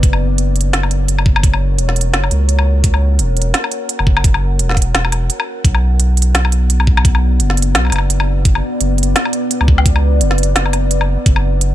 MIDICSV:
0, 0, Header, 1, 4, 480
1, 0, Start_track
1, 0, Key_signature, 2, "minor"
1, 0, Tempo, 350877
1, 45, Time_signature, 4, 2, 24, 8
1, 16070, End_track
2, 0, Start_track
2, 0, Title_t, "Ambient pad"
2, 0, Program_c, 0, 92
2, 47, Note_on_c, 0, 70, 81
2, 137, Note_on_c, 0, 73, 69
2, 1101, Note_on_c, 0, 78, 79
2, 7724, Note_off_c, 0, 73, 0
2, 7726, Note_off_c, 0, 70, 0
2, 7727, Note_on_c, 0, 59, 84
2, 8065, Note_on_c, 0, 71, 83
2, 8410, Note_on_c, 0, 74, 85
2, 15404, Note_off_c, 0, 71, 0
2, 15405, Note_off_c, 0, 74, 0
2, 15405, Note_on_c, 0, 70, 77
2, 15406, Note_off_c, 0, 59, 0
2, 15831, Note_on_c, 0, 73, 85
2, 16070, Note_off_c, 0, 70, 0
2, 16070, Note_off_c, 0, 73, 0
2, 16070, Note_off_c, 0, 78, 0
2, 16070, End_track
3, 0, Start_track
3, 0, Title_t, "Sub bass"
3, 0, Program_c, 1, 38
3, 43, Note_on_c, 1, 30, 103
3, 2444, Note_on_c, 1, 28, 95
3, 2464, Note_off_c, 1, 30, 0
3, 2924, Note_on_c, 1, 30, 95
3, 2945, Note_off_c, 1, 28, 0
3, 3148, Note_off_c, 1, 30, 0
3, 3166, Note_on_c, 1, 37, 86
3, 4368, Note_on_c, 1, 28, 93
3, 4388, Note_off_c, 1, 37, 0
3, 4834, Note_off_c, 1, 28, 0
3, 5465, Note_on_c, 1, 30, 98
3, 6287, Note_on_c, 1, 28, 94
3, 6308, Note_off_c, 1, 30, 0
3, 6753, Note_off_c, 1, 28, 0
3, 6767, Note_on_c, 1, 28, 78
3, 7247, Note_off_c, 1, 28, 0
3, 7724, Note_on_c, 1, 35, 98
3, 10127, Note_on_c, 1, 30, 96
3, 10147, Note_off_c, 1, 35, 0
3, 10605, Note_on_c, 1, 35, 95
3, 10626, Note_off_c, 1, 30, 0
3, 10829, Note_off_c, 1, 35, 0
3, 10843, Note_on_c, 1, 30, 85
3, 11791, Note_off_c, 1, 30, 0
3, 12048, Note_on_c, 1, 30, 96
3, 12514, Note_off_c, 1, 30, 0
3, 13142, Note_on_c, 1, 37, 98
3, 13967, Note_on_c, 1, 30, 96
3, 13988, Note_off_c, 1, 37, 0
3, 14433, Note_off_c, 1, 30, 0
3, 14446, Note_on_c, 1, 30, 80
3, 15285, Note_off_c, 1, 30, 0
3, 15406, Note_on_c, 1, 30, 98
3, 16070, Note_off_c, 1, 30, 0
3, 16070, End_track
4, 0, Start_track
4, 0, Title_t, "Drums"
4, 42, Note_on_c, 9, 36, 110
4, 44, Note_on_c, 9, 42, 72
4, 179, Note_off_c, 9, 36, 0
4, 180, Note_on_c, 9, 77, 47
4, 181, Note_off_c, 9, 42, 0
4, 317, Note_off_c, 9, 77, 0
4, 523, Note_on_c, 9, 42, 72
4, 660, Note_off_c, 9, 42, 0
4, 761, Note_on_c, 9, 42, 43
4, 830, Note_off_c, 9, 42, 0
4, 830, Note_on_c, 9, 42, 61
4, 966, Note_off_c, 9, 42, 0
4, 1004, Note_on_c, 9, 38, 107
4, 1004, Note_on_c, 9, 42, 70
4, 1140, Note_off_c, 9, 38, 0
4, 1140, Note_off_c, 9, 42, 0
4, 1141, Note_on_c, 9, 77, 49
4, 1244, Note_on_c, 9, 42, 60
4, 1278, Note_off_c, 9, 77, 0
4, 1381, Note_off_c, 9, 42, 0
4, 1483, Note_on_c, 9, 42, 72
4, 1620, Note_off_c, 9, 42, 0
4, 1621, Note_on_c, 9, 77, 50
4, 1722, Note_on_c, 9, 36, 103
4, 1758, Note_off_c, 9, 77, 0
4, 1859, Note_off_c, 9, 36, 0
4, 1861, Note_on_c, 9, 77, 73
4, 1962, Note_on_c, 9, 36, 105
4, 1965, Note_on_c, 9, 42, 74
4, 1998, Note_off_c, 9, 77, 0
4, 2099, Note_off_c, 9, 36, 0
4, 2101, Note_on_c, 9, 77, 48
4, 2102, Note_off_c, 9, 42, 0
4, 2237, Note_off_c, 9, 77, 0
4, 2442, Note_on_c, 9, 42, 74
4, 2579, Note_off_c, 9, 42, 0
4, 2581, Note_on_c, 9, 38, 34
4, 2684, Note_on_c, 9, 42, 44
4, 2718, Note_off_c, 9, 38, 0
4, 2751, Note_off_c, 9, 42, 0
4, 2751, Note_on_c, 9, 42, 59
4, 2888, Note_off_c, 9, 42, 0
4, 2921, Note_on_c, 9, 38, 109
4, 2921, Note_on_c, 9, 42, 73
4, 3058, Note_off_c, 9, 38, 0
4, 3058, Note_off_c, 9, 42, 0
4, 3059, Note_on_c, 9, 77, 52
4, 3162, Note_on_c, 9, 42, 59
4, 3196, Note_off_c, 9, 77, 0
4, 3299, Note_off_c, 9, 42, 0
4, 3403, Note_on_c, 9, 42, 73
4, 3538, Note_on_c, 9, 77, 51
4, 3540, Note_off_c, 9, 42, 0
4, 3675, Note_off_c, 9, 77, 0
4, 3883, Note_on_c, 9, 36, 106
4, 3883, Note_on_c, 9, 42, 76
4, 4019, Note_on_c, 9, 77, 51
4, 4020, Note_off_c, 9, 36, 0
4, 4020, Note_off_c, 9, 42, 0
4, 4156, Note_off_c, 9, 77, 0
4, 4364, Note_on_c, 9, 42, 73
4, 4501, Note_off_c, 9, 42, 0
4, 4606, Note_on_c, 9, 42, 45
4, 4673, Note_off_c, 9, 42, 0
4, 4673, Note_on_c, 9, 42, 61
4, 4810, Note_off_c, 9, 42, 0
4, 4842, Note_on_c, 9, 38, 106
4, 4842, Note_on_c, 9, 42, 74
4, 4979, Note_off_c, 9, 38, 0
4, 4979, Note_off_c, 9, 42, 0
4, 4980, Note_on_c, 9, 77, 52
4, 5083, Note_on_c, 9, 42, 60
4, 5117, Note_off_c, 9, 77, 0
4, 5219, Note_off_c, 9, 42, 0
4, 5324, Note_on_c, 9, 42, 72
4, 5460, Note_on_c, 9, 77, 50
4, 5461, Note_off_c, 9, 42, 0
4, 5564, Note_on_c, 9, 36, 94
4, 5596, Note_off_c, 9, 77, 0
4, 5700, Note_on_c, 9, 77, 72
4, 5701, Note_off_c, 9, 36, 0
4, 5804, Note_on_c, 9, 36, 113
4, 5805, Note_on_c, 9, 42, 77
4, 5837, Note_off_c, 9, 77, 0
4, 5941, Note_off_c, 9, 36, 0
4, 5942, Note_off_c, 9, 42, 0
4, 5942, Note_on_c, 9, 77, 56
4, 6078, Note_off_c, 9, 77, 0
4, 6284, Note_on_c, 9, 42, 75
4, 6421, Note_off_c, 9, 42, 0
4, 6422, Note_on_c, 9, 38, 35
4, 6446, Note_off_c, 9, 38, 0
4, 6446, Note_on_c, 9, 38, 28
4, 6493, Note_off_c, 9, 38, 0
4, 6493, Note_on_c, 9, 38, 22
4, 6523, Note_on_c, 9, 36, 58
4, 6526, Note_on_c, 9, 42, 47
4, 6593, Note_off_c, 9, 42, 0
4, 6593, Note_on_c, 9, 42, 63
4, 6629, Note_off_c, 9, 38, 0
4, 6660, Note_off_c, 9, 36, 0
4, 6730, Note_off_c, 9, 42, 0
4, 6766, Note_on_c, 9, 38, 107
4, 6766, Note_on_c, 9, 42, 75
4, 6903, Note_off_c, 9, 38, 0
4, 6903, Note_off_c, 9, 42, 0
4, 6903, Note_on_c, 9, 77, 53
4, 7009, Note_off_c, 9, 77, 0
4, 7009, Note_on_c, 9, 42, 64
4, 7009, Note_on_c, 9, 77, 37
4, 7145, Note_off_c, 9, 42, 0
4, 7145, Note_off_c, 9, 77, 0
4, 7247, Note_on_c, 9, 42, 77
4, 7383, Note_on_c, 9, 77, 55
4, 7384, Note_off_c, 9, 42, 0
4, 7520, Note_off_c, 9, 77, 0
4, 7723, Note_on_c, 9, 36, 108
4, 7725, Note_on_c, 9, 42, 80
4, 7859, Note_off_c, 9, 36, 0
4, 7861, Note_on_c, 9, 77, 54
4, 7862, Note_off_c, 9, 42, 0
4, 7997, Note_off_c, 9, 77, 0
4, 8203, Note_on_c, 9, 42, 77
4, 8339, Note_off_c, 9, 42, 0
4, 8444, Note_on_c, 9, 42, 50
4, 8511, Note_off_c, 9, 42, 0
4, 8511, Note_on_c, 9, 42, 64
4, 8648, Note_off_c, 9, 42, 0
4, 8683, Note_on_c, 9, 38, 112
4, 8683, Note_on_c, 9, 42, 79
4, 8820, Note_off_c, 9, 38, 0
4, 8820, Note_off_c, 9, 42, 0
4, 8821, Note_on_c, 9, 77, 52
4, 8923, Note_on_c, 9, 42, 64
4, 8958, Note_off_c, 9, 77, 0
4, 9060, Note_off_c, 9, 42, 0
4, 9164, Note_on_c, 9, 42, 76
4, 9301, Note_off_c, 9, 42, 0
4, 9302, Note_on_c, 9, 77, 54
4, 9402, Note_on_c, 9, 36, 99
4, 9439, Note_off_c, 9, 77, 0
4, 9539, Note_off_c, 9, 36, 0
4, 9540, Note_on_c, 9, 77, 80
4, 9642, Note_on_c, 9, 36, 118
4, 9643, Note_on_c, 9, 42, 85
4, 9677, Note_off_c, 9, 77, 0
4, 9778, Note_off_c, 9, 36, 0
4, 9779, Note_on_c, 9, 77, 51
4, 9780, Note_off_c, 9, 42, 0
4, 9916, Note_off_c, 9, 77, 0
4, 10122, Note_on_c, 9, 42, 79
4, 10258, Note_off_c, 9, 42, 0
4, 10259, Note_on_c, 9, 38, 38
4, 10361, Note_on_c, 9, 42, 50
4, 10396, Note_off_c, 9, 38, 0
4, 10430, Note_off_c, 9, 42, 0
4, 10430, Note_on_c, 9, 42, 67
4, 10567, Note_off_c, 9, 42, 0
4, 10601, Note_on_c, 9, 38, 113
4, 10601, Note_on_c, 9, 42, 79
4, 10737, Note_on_c, 9, 77, 23
4, 10738, Note_off_c, 9, 38, 0
4, 10738, Note_off_c, 9, 42, 0
4, 10760, Note_off_c, 9, 77, 0
4, 10760, Note_on_c, 9, 77, 28
4, 10806, Note_off_c, 9, 77, 0
4, 10806, Note_on_c, 9, 77, 32
4, 10839, Note_off_c, 9, 77, 0
4, 10839, Note_on_c, 9, 42, 67
4, 10839, Note_on_c, 9, 77, 38
4, 10886, Note_off_c, 9, 77, 0
4, 10886, Note_on_c, 9, 77, 39
4, 10923, Note_off_c, 9, 77, 0
4, 10923, Note_on_c, 9, 77, 45
4, 10975, Note_off_c, 9, 42, 0
4, 11060, Note_off_c, 9, 77, 0
4, 11082, Note_on_c, 9, 42, 83
4, 11217, Note_on_c, 9, 77, 53
4, 11218, Note_off_c, 9, 42, 0
4, 11354, Note_off_c, 9, 77, 0
4, 11562, Note_on_c, 9, 42, 76
4, 11563, Note_on_c, 9, 36, 120
4, 11699, Note_off_c, 9, 42, 0
4, 11700, Note_off_c, 9, 36, 0
4, 11701, Note_on_c, 9, 77, 50
4, 11837, Note_off_c, 9, 77, 0
4, 12046, Note_on_c, 9, 42, 77
4, 12183, Note_off_c, 9, 42, 0
4, 12287, Note_on_c, 9, 42, 49
4, 12353, Note_off_c, 9, 42, 0
4, 12353, Note_on_c, 9, 42, 67
4, 12490, Note_off_c, 9, 42, 0
4, 12527, Note_on_c, 9, 38, 123
4, 12527, Note_on_c, 9, 42, 77
4, 12660, Note_on_c, 9, 77, 50
4, 12664, Note_off_c, 9, 38, 0
4, 12664, Note_off_c, 9, 42, 0
4, 12764, Note_on_c, 9, 42, 67
4, 12797, Note_off_c, 9, 77, 0
4, 12901, Note_off_c, 9, 42, 0
4, 13007, Note_on_c, 9, 42, 77
4, 13143, Note_on_c, 9, 77, 52
4, 13144, Note_off_c, 9, 42, 0
4, 13244, Note_on_c, 9, 36, 111
4, 13280, Note_off_c, 9, 77, 0
4, 13380, Note_off_c, 9, 36, 0
4, 13381, Note_on_c, 9, 77, 75
4, 13484, Note_on_c, 9, 36, 117
4, 13484, Note_on_c, 9, 42, 76
4, 13518, Note_off_c, 9, 77, 0
4, 13621, Note_off_c, 9, 36, 0
4, 13621, Note_off_c, 9, 42, 0
4, 13621, Note_on_c, 9, 77, 51
4, 13758, Note_off_c, 9, 77, 0
4, 13965, Note_on_c, 9, 42, 76
4, 14101, Note_on_c, 9, 38, 38
4, 14102, Note_off_c, 9, 42, 0
4, 14202, Note_on_c, 9, 42, 48
4, 14237, Note_off_c, 9, 38, 0
4, 14271, Note_off_c, 9, 42, 0
4, 14271, Note_on_c, 9, 42, 62
4, 14408, Note_off_c, 9, 42, 0
4, 14442, Note_on_c, 9, 38, 114
4, 14442, Note_on_c, 9, 42, 76
4, 14578, Note_on_c, 9, 77, 48
4, 14579, Note_off_c, 9, 38, 0
4, 14579, Note_off_c, 9, 42, 0
4, 14682, Note_off_c, 9, 77, 0
4, 14682, Note_on_c, 9, 42, 65
4, 14682, Note_on_c, 9, 77, 35
4, 14819, Note_off_c, 9, 42, 0
4, 14819, Note_off_c, 9, 77, 0
4, 14923, Note_on_c, 9, 42, 72
4, 15059, Note_off_c, 9, 42, 0
4, 15061, Note_on_c, 9, 77, 51
4, 15197, Note_off_c, 9, 77, 0
4, 15404, Note_on_c, 9, 42, 75
4, 15405, Note_on_c, 9, 36, 119
4, 15541, Note_off_c, 9, 42, 0
4, 15542, Note_off_c, 9, 36, 0
4, 15542, Note_on_c, 9, 77, 50
4, 15679, Note_off_c, 9, 77, 0
4, 15886, Note_on_c, 9, 42, 75
4, 16023, Note_off_c, 9, 42, 0
4, 16070, End_track
0, 0, End_of_file